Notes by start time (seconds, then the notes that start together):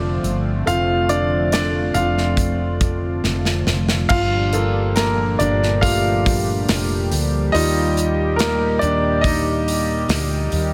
Already playing: F1 D3 F3 A3 C4 D4 F4 C5 D5
0.23 G1, closed hi-hat
0.66 F1 A3 C4 F4 F5, closed hi-hat
1.09 D4 D5, closed hi-hat
1.52 D4 D5, snare, closed hi-hat
1.94 F1 F4 F5, closed hi-hat
2.18 snare
2.37 kick, closed hi-hat
2.81 kick, closed hi-hat
3.24 F1, snare
3.45 snare
3.67 F1, snare
3.89 snare
4.09 G1 A#2 F3 G3 D4 F4 G4 F5, kick, crash
4.53 A#3 F4 A4, hi-hat pedal, open hi-hat
4.96 A#3 A#4, snare, hi-hat pedal, open hi-hat
5.39 G1 D4 D5, hi-hat pedal, open hi-hat
5.63 snare
5.81 A3 A#3 F4 F5, kick, hi-hat pedal, open hi-hat
6.26 kick, hi-hat pedal, open hi-hat
6.68 F1, snare, hi-hat pedal, open hi-hat
7.12 D2, hi-hat pedal, open hi-hat
7.52 D#2 G3 A#3 D#4 F4 D5 D#5, hi-hat pedal, open hi-hat
7.97 hi-hat pedal, open hi-hat
8.36 A#4, hi-hat pedal, open hi-hat
8.40 A#3, snare
8.79 D#2 D4 D5, hi-hat pedal, open hi-hat
9.21 D#5, kick, hi-hat pedal, open hi-hat
9.26 D#4
9.68 hi-hat pedal, open hi-hat
10.09 D2, snare, hi-hat pedal, open hi-hat
10.52 D#2, hi-hat pedal, open hi-hat